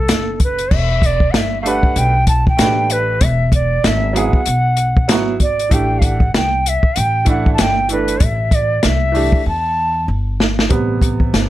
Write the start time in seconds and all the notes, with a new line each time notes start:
Already playing: A4
0.08 F#1, snare, closed hi-hat
0.40 B4, kick, closed hi-hat
0.59 closed hi-hat
0.71 E1 E5, kick, crash
1.02 D5, kick, closed hi-hat
1.20 kick
1.31 G1 F#5, snare, closed hi-hat
1.37 E5
1.61 A3 D4 F5
1.66 G4 B4 F#5, closed hi-hat
1.83 muted upright bass stroke, kick
1.96 B1 G5, closed hi-hat
2.27 A5, kick, closed hi-hat
2.47 G5, kick
2.57 A1 A3 D4 F#4 B4, snare, closed hi-hat
2.66 G4
2.90 B4, closed hi-hat
3.21 E1 E5, kick, closed hi-hat
3.52 D5, kick, closed hi-hat
3.84 G#1 E5, snare, closed hi-hat
4.13 F#3 B3 E4 F#5, closed hi-hat
4.17 G#4
4.33 kick
4.46 B1, closed hi-hat
4.77 closed hi-hat
4.97 kick
5.08 G#1 F#3 B3 E4 F#4, snare, closed hi-hat
5.40 D5, kick, closed hi-hat
5.59 closed hi-hat
5.69 A1 E3 A3 D4 G5, kick, closed hi-hat
5.73 G4
5.99 F5, kick, closed hi-hat
6.04 F#5
6.20 kick
6.34 C2 G5, snare, closed hi-hat
6.66 E5, closed hi-hat
6.83 muted upright bass stroke, kick
6.96 A1 G5, closed hi-hat
7.25 E3 A3 D4 E4, kick, closed hi-hat
7.29 F#5
7.46 kick
7.54 A5
7.58 G1 G5, snare, closed hi-hat
7.89 E3 A3 D4 B4, closed hi-hat
7.93 A4
8.08 closed hi-hat
8.20 A1 E5, kick, closed hi-hat
8.51 D5, kick, closed hi-hat
8.83 C2 E5, snare, closed hi-hat
9.12 E3 A3 D4, open hi-hat
9.16 G4
9.32 kick
9.46 E2 A5
10.08 G1
10.40 snare
10.59 snare
10.69 A1 C3 G3 B3, kick, closed hi-hat
11.01 kick, closed hi-hat
11.20 kick
11.33 G1, snare, closed hi-hat